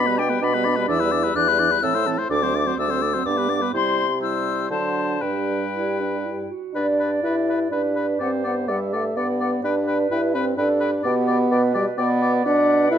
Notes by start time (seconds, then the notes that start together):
Already playing: B2 B5
0.05 G3 B3 B4
0.18 B3 D4 D5 G5
0.29 G3 B3 B4
0.41 B2 B3 D4 D5 B5
0.54 G3 B3 B4
0.65 B3 D4 D5
0.76 G3 B3 B4
0.88 E2 E3 D4 D5 E6
0.99 G3 E4 B4
1.12 E3 D4 D5
1.23 G3 E4 B4
1.35 E2 E3 D4 D5 F#6
1.48 G3 E4 B4
1.59 E3 D4 D5
1.70 G3 E4 B4
1.82 A2 E3 C4 A4 E6
1.94 A3 E4 C5
2.06 E3 C4 A4
2.18 A3 E4 C5
2.30 D2 A3 D4 D5 D6
2.42 F#3 C4 C5
2.54 A3 D4 D5
2.66 F#3 C4 C5
2.78 D2 A3 D4 D5 E6
2.90 F#3 C4 C5
3.02 A3 D4 D5
3.14 F#3 C4 C5
3.26 G2 B3 D4 D5 D6
3.37 G3 B3 B4
3.49 B3 D4 D5
3.60 G3 B3 B4
3.73 C3 G3 E4 C5 C6
4.21 G3 E4 C5 E6
4.70 D3 F#3 D4 C5 A5
5.21 G2 G3 D4 B4 G5
5.74 E4
6.00 D4
6.26 E4
6.51 F#4
6.74 G2 D4 B4 D5
7.00 B4 D5
7.23 G2 E4 B4 D5
7.48 B4 D5
7.71 G2 D4 B4 D5
7.96 B4 D5
8.20 G2 C4 C5 D5 F#5
8.44 B3 D5 F#5
8.68 G2 G3 D5 E5 F#5
8.93 A3 D5 F#5
9.16 G2 B3 D5 F#5
9.41 D5 F#5
9.63 G2 D4 B4 G5
9.87 B4 G5
10.11 G2 E4 B4 G5
10.34 C4 B4 G5
10.57 G2 D4 A4 B4 G5
10.80 B4 G5
11.04 B2 B3 G4 D5 G5
11.27 D5 G5
11.51 B2 B4 D5 G5
11.73 G3 D5 G5
11.97 B2 B3 D5 G5
12.21 D5 G5
12.44 B2 D4 B4 D5 F#5
12.91 E4 A4 B4 E5